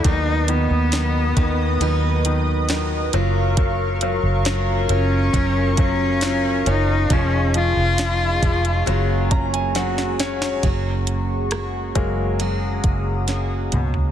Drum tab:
HH |x-x-x-x-x-x-x-x-|x-x-x-x-x-x-x-x-|x-x-x-xxx-xxx-x-|x-x-x-x-x-x-x-x-|
SD |----o-------o---|----o-------o---|----o-------oooo|----r-------o---|
T2 |----------------|----------------|----------------|--------------o-|
FT |----------------|----------------|----------------|---------------o|
BD |o-----o---------|o-------o-o-----|o-----o---o-----|o-----o---o-----|